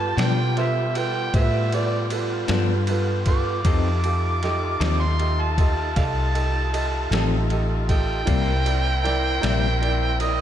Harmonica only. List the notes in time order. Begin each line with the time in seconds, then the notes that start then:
Already playing: A5
0.19 G5
0.57 G4 C5 E5
0.97 G5
1.35 G4 C5 E5
1.74 D5
3.29 D6
5.01 C6
5.41 A5
5.97 D5 F5 A5
7.90 G5
10.20 D#5